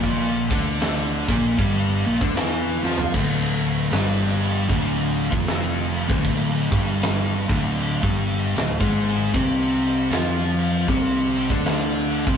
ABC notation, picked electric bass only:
X:1
M:4/4
L:1/16
Q:"Swing" 1/4=78
K:Dm
V:1 name="Picked electric bass" clef=bass
B,,,2 D,,4 B,,,2 G,,,2 B,,, D,, E,,2 F,,2 | D,,,4 G,,,4 D,,,3 F,,,4 D,,,- | D,,,2 G,,,4 D,,,3 G,,,3 D,,, ^G,,,3 | C,,4 F,,4 C,,3 D,,4 C,, |]